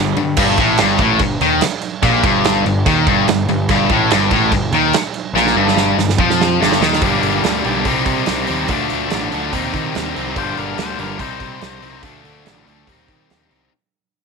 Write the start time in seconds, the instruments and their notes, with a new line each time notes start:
Already playing: picked electric bass G1, distorted electric guitar G2 D3, overdriven electric guitar G2 D3 G3
0.16 picked electric bass G2, distorted electric guitar G2 D3, ride
0.37 picked electric bass G1, overdriven electric guitar G2, kick, crash
0.58 picked electric bass A1, overdriven electric guitar A2, kick, crash
0.78 picked electric bass G1, overdriven electric guitar G2, snare, crash
0.98 picked electric bass A1, overdriven electric guitar A2, kick, crash
1.19 picked electric bass G1, overdriven electric guitar G2, kick, crash
1.41 picked electric bass D#2, overdriven electric guitar D#3, crash
1.61 snare, crash
1.81 crash
2.03 picked electric bass A#1, overdriven electric guitar A#2, kick, crash
2.24 picked electric bass G1, overdriven electric guitar G2, kick, crash
2.44 snare, crash
2.66 picked electric bass G1, overdriven electric guitar G2, crash
2.86 picked electric bass D#2, overdriven electric guitar D#3, kick, crash
3.07 picked electric bass G1, overdriven electric guitar G2, kick, crash
3.28 picked electric bass G1, overdriven electric guitar G2, snare, crash
3.48 picked electric bass G1, overdriven electric guitar G2, crash
3.69 picked electric bass G1, overdriven electric guitar G2, kick, crash
3.89 picked electric bass A1, overdriven electric guitar A2, kick, crash
4.11 picked electric bass G1, overdriven electric guitar G2, snare, crash
4.31 picked electric bass A1, overdriven electric guitar A2, kick, crash
4.52 picked electric bass G1, overdriven electric guitar G2, kick, crash
4.71 picked electric bass D#2, overdriven electric guitar D#3, crash
4.93 snare, crash
5.14 crash
5.33 picked electric bass A#1, overdriven electric guitar A#2, snare
5.47 snare
5.55 picked electric bass G1, overdriven electric guitar G2
5.68 snare
5.77 snare
5.97 picked electric bass G1, overdriven electric guitar G2, snare
6.09 snare
6.18 picked electric bass F2, overdriven electric guitar F3, kick
6.30 snare
6.41 snare
6.60 picked electric bass G1, overdriven electric guitar G2, snare
6.72 snare
6.81 picked electric bass D#2, overdriven electric guitar D#3, snare
6.93 snare
7.01 picked electric bass G1, overdriven electric guitar G2 D3 G3, distorted electric guitar A#3 D4, kick, open hi-hat
7.23 picked electric bass G1, open hi-hat
7.44 picked electric bass D2, snare, open hi-hat
7.64 picked electric bass B1, overdriven electric guitar G2 D3 G3, open hi-hat
7.85 picked electric bass C2, overdriven electric guitar C3 G3 C4, kick, open hi-hat
7.89 distorted electric guitar D#4
8.05 picked electric bass C3, kick, open hi-hat
8.26 picked electric bass C2, snare, open hi-hat
8.47 picked electric bass D#2, overdriven electric guitar C3 G3 C4, open hi-hat
8.68 picked electric bass D2, overdriven electric guitar D3 A3 D4, distorted electric guitar F3, kick, open hi-hat
8.90 picked electric bass D2, open hi-hat
9.10 picked electric bass A1, snare, open hi-hat
9.32 picked electric bass D2, overdriven electric guitar D3 A3 D4, open hi-hat
9.52 picked electric bass D#2, overdriven electric guitar C3 G3 C4, distorted electric guitar D#3 D#4, kick, open hi-hat
9.73 picked electric bass D#3, kick, open hi-hat
9.95 picked electric bass D#2, snare, open hi-hat
10.15 picked electric bass C2, overdriven electric guitar C3 G3 C4, open hi-hat
10.36 picked electric bass G1, overdriven electric guitar G2 D3 G3, distorted electric guitar A#3 D4, lead electric guitar C5, kick, open hi-hat
10.57 picked electric bass G1, lead electric guitar A#4, open hi-hat
10.78 picked electric bass D2, lead electric guitar C5, snare, open hi-hat
10.99 picked electric bass G1, overdriven electric guitar G2 D3 G3, lead electric guitar A#4, open hi-hat
11.19 picked electric bass C2, overdriven electric guitar C3 G3 C4, distorted electric guitar D#4, lead electric guitar C5, kick, open hi-hat
11.40 picked electric bass C3, kick, open hi-hat
11.61 picked electric bass C2, snare, open hi-hat
11.82 picked electric bass C2, overdriven electric guitar C3 G3 C4, open hi-hat
12.03 picked electric bass D2, overdriven electric guitar D3 A3 D4, distorted electric guitar F3, kick, open hi-hat
12.24 picked electric bass D2, open hi-hat
12.46 picked electric bass A1, snare, open hi-hat
12.66 picked electric bass D2, overdriven electric guitar D3 A3 D4, open hi-hat
12.86 picked electric bass D#2, overdriven electric guitar C3 G3 C4, distorted electric guitar D#3, kick, open hi-hat
12.90 distorted electric guitar D#4
13.08 picked electric bass D#3, kick, open hi-hat
13.30 picked electric bass D#2, snare, open hi-hat
13.50 picked electric bass C2, overdriven electric guitar C3 G3 C4